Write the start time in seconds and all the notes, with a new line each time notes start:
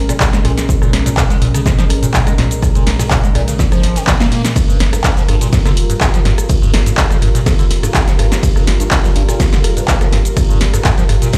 Already playing: G#1 G#3 C#4 A#4
0.09 A#2, cross-stick, closed hi-hat, shaker
0.20 A#2, kick, snare, clap, closed hi-hat, shaker
0.33 G#3, snare, closed hi-hat, shaker
0.45 A#1 A#2, cross-stick, closed hi-hat, open hi-hat
0.57 snare, closed hi-hat, shaker
0.69 kick, closed hi-hat, shaker
0.82 A#2, cross-stick, shaker
0.93 A#1, snare, closed hi-hat, open hi-hat
1.06 A#2, closed hi-hat, shaker
1.17 A#2, kick, cross-stick, snare, clap, open hi-hat, shaker
1.30 G#3, snare, closed hi-hat, shaker
1.41 A#1 A#2, closed hi-hat, open hi-hat
1.54 C#3, cross-stick, snare, closed hi-hat, shaker
1.66 A#2, kick, snare, closed hi-hat, shaker
1.78 F3, snare, closed hi-hat, shaker
1.90 G#1, cross-stick, closed hi-hat, open hi-hat
2.03 A#2, closed hi-hat, shaker
2.14 A#2, kick, snare, clap, closed hi-hat, shaker
2.27 G#3, cross-stick, closed hi-hat, shaker
2.38 A#1 A#2, snare, closed hi-hat, open hi-hat
2.51 closed hi-hat, shaker
2.62 kick, cross-stick, closed hi-hat, shaker
2.75 A#2, closed hi-hat, shaker
2.86 A#1, snare, open hi-hat
2.99 A#2, cross-stick, snare, closed hi-hat, open hi-hat, shaker
3.10 A#2, kick, snare, clap, closed hi-hat, shaker
3.24 G#3, closed hi-hat, shaker
3.35 A#1 A#2, cross-stick, closed hi-hat, open hi-hat
3.48 C#3, snare, closed hi-hat, shaker
3.58 A#2, kick, snare, open hi-hat, shaker
3.72 F3, cross-stick, snare, closed hi-hat, shaker
3.83 G#1, snare, closed hi-hat, open hi-hat
3.96 D#3, snare, closed hi-hat, open hi-hat, shaker
4.07 A#2, kick, snare, clap, open hi-hat, shaker
4.20 A#3, snare, closed hi-hat, open hi-hat, shaker
4.31 A#2 A#3, snare, open hi-hat
4.44 snare, closed hi-hat, open hi-hat, shaker
4.56 G3 F4 A#4, kick, cross-stick, ride, shaker
4.69 G2, shaker
4.79 G1, snare, closed hi-hat, open hi-hat
4.93 G2, cross-stick, closed hi-hat, shaker
5.04 G2, kick, snare, clap, open hi-hat, ride, shaker
5.17 F3, snare, closed hi-hat, shaker
5.28 G1 G2, cross-stick, closed hi-hat, open hi-hat
5.41 A#2, snare, closed hi-hat, shaker
5.52 G2, kick, snare, closed hi-hat, ride, shaker
5.66 D3, cross-stick, snare, closed hi-hat, shaker
5.77 F1, closed hi-hat, open hi-hat
5.90 G2, closed hi-hat, shaker
6.01 G2, kick, cross-stick, snare, clap, closed hi-hat, ride, shaker
6.14 F3, closed hi-hat, shaker
6.25 G1 G2, snare, closed hi-hat, open hi-hat
6.38 cross-stick, closed hi-hat, shaker
6.49 kick, closed hi-hat, ride, shaker
6.62 G2, shaker
6.73 G1, cross-stick, snare, closed hi-hat, open hi-hat
6.86 G2, closed hi-hat, shaker
6.97 G2, kick, snare, clap, closed hi-hat, ride, shaker
7.11 F3, cross-stick, closed hi-hat, shaker
7.22 G1 G2, closed hi-hat, open hi-hat
7.35 A#2, snare, closed hi-hat, shaker
7.46 G2, kick, cross-stick, snare, closed hi-hat, ride, shaker
7.59 D3, closed hi-hat, shaker
7.70 F1, snare, closed hi-hat, open hi-hat
7.83 G2, cross-stick, closed hi-hat, shaker
7.94 G2, kick, snare, clap, closed hi-hat, ride, shaker
8.07 F3, snare, closed hi-hat, shaker
8.19 G1 G2, cross-stick, closed hi-hat, open hi-hat
8.31 snare, closed hi-hat, shaker
8.43 kick, closed hi-hat, ride, shaker
8.56 G2, cross-stick, shaker
8.67 G1, snare, closed hi-hat, open hi-hat
8.80 G2, closed hi-hat, shaker
8.91 G2, kick, cross-stick, snare, clap, open hi-hat, ride, shaker
9.04 F3, snare, closed hi-hat, shaker
9.16 G1 G2, closed hi-hat, open hi-hat
9.28 A#2, cross-stick, snare, closed hi-hat, shaker
9.40 G2, kick, snare, closed hi-hat, ride, shaker
9.53 D3, snare, closed hi-hat, shaker
9.64 F1, cross-stick, closed hi-hat, open hi-hat
9.77 G2, closed hi-hat, shaker
9.88 G2, kick, snare, clap, closed hi-hat, ride, shaker
10.01 F3, cross-stick, closed hi-hat, shaker
10.12 G1 G2, snare, closed hi-hat, open hi-hat
10.25 closed hi-hat, shaker
10.37 kick, cross-stick, closed hi-hat, ride, shaker
10.49 G2, shaker
10.61 G1, snare, closed hi-hat, open hi-hat
10.73 G2, cross-stick, closed hi-hat, shaker
10.84 G2, kick, snare, clap, closed hi-hat, ride, shaker
10.98 F3, closed hi-hat, shaker
11.09 G1 G2, cross-stick, closed hi-hat, open hi-hat
11.22 A#2, snare, closed hi-hat, shaker
11.33 G2, kick, snare, closed hi-hat, ride, shaker